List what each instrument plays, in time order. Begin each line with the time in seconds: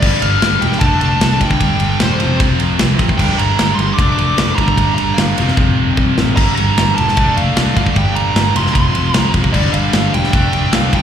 0.00 picked electric bass G1, distorted electric guitar G2, lead electric guitar D5, kick, crash
0.04 distorted electric guitar D3 G3
0.22 picked electric bass G1, lead electric guitar F5, ride
0.42 picked electric bass G1, snare, ride
0.61 picked electric bass E1, lead electric guitar G5, ride
0.72 snare
0.79 picked electric bass F1, distorted electric guitar D3 A3, lead electric guitar A5, kick, ride
0.85 distorted electric guitar D4
1.01 picked electric bass F1, lead electric guitar A5, ride
1.20 picked electric bass C2, snare, ride
1.41 picked electric bass G1, distorted electric guitar G2 D3 G3, lead electric guitar G5, kick, ride
1.51 kick
1.61 picked electric bass G1, kick, ride
1.80 picked electric bass G1, lead electric guitar G5, ride
2.00 picked electric bass E1, lead electric guitar C5, snare, ride
2.20 picked electric bass F1, distorted electric guitar F2 C3 F3, ride
2.40 picked electric bass F1, kick, ride
2.60 picked electric bass F1, ride
2.79 picked electric bass C2, snare, ride
2.99 picked electric bass A1, kick, ride
3.09 kick
3.18 picked electric bass G1, distorted electric guitar G2 D3 G3, lead electric guitar G5, kick, crash
3.38 picked electric bass G1, lead electric guitar A#5, ride
3.59 picked electric bass G1, snare, ride
3.75 picked electric bass G1, lead electric guitar C6, ride
3.94 distorted electric guitar D3, lead electric guitar D6
3.98 picked electric bass F1, distorted electric guitar A3 D4, kick, ride
4.13 lead electric guitar D6
4.17 picked electric bass F1, ride
4.38 picked electric bass F1, snare, ride
4.56 picked electric bass G1, distorted electric guitar G2 D3, lead electric guitar A#5, kick, ride
4.61 distorted electric guitar G3
4.68 kick
4.78 picked electric bass G1, kick, ride
4.95 picked electric bass G1, lead electric guitar A#5, ride
5.14 lead electric guitar F5
5.18 picked electric bass G1, snare, ride
5.38 picked electric bass F1, distorted electric guitar F2 C3 F3, ride
5.48 snare
5.57 picked electric bass F1, kick, high tom
5.78 picked electric bass F1
5.97 picked electric bass C2, kick
6.18 picked electric bass A1, snare
6.36 picked electric bass G1, distorted electric guitar G2 D3 G3, lead electric guitar A#5, kick, crash
6.56 picked electric bass G1, lead electric guitar A#5, ride
6.78 picked electric bass G1, snare, ride
6.95 picked electric bass E1, lead electric guitar A5, ride
7.09 snare
7.17 picked electric bass F1, distorted electric guitar D3 A3 D4, kick, ride
7.37 picked electric bass F1, lead electric guitar F5, ride
7.57 picked electric bass C2, snare, ride
7.76 picked electric bass G1, distorted electric guitar G2 D3 G3, lead electric guitar F5, kick, ride
7.86 kick
7.96 picked electric bass G1, lead electric guitar G5, kick, ride
8.15 picked electric bass G1, lead electric guitar A#5, ride
8.36 picked electric bass G1, snare, ride
8.56 picked electric bass F1, distorted electric guitar F2 C3 F3, lead electric guitar C6, ride
8.67 snare
8.74 picked electric bass F1, lead electric guitar C6, kick, ride
8.95 picked electric bass F1, ride
9.14 picked electric bass C2, lead electric guitar A#5, snare, ride
9.34 picked electric bass F1, kick, ride
9.44 kick
9.53 picked electric bass G1, distorted electric guitar G2 D3 G3, lead electric guitar D5, kick, crash
9.73 picked electric bass G1, lead electric guitar F5, ride
9.93 picked electric bass G1, snare, ride
10.14 picked electric bass E1, lead electric guitar G5, ride
10.24 snare
10.33 picked electric bass F1, distorted electric guitar D3 A3 D4, kick, ride
10.53 picked electric bass F1, ride
10.73 picked electric bass C2, lead electric guitar F5, snare, ride
10.92 picked electric bass G1, distorted electric guitar G2 D3 G3, lead electric guitar G5, kick, ride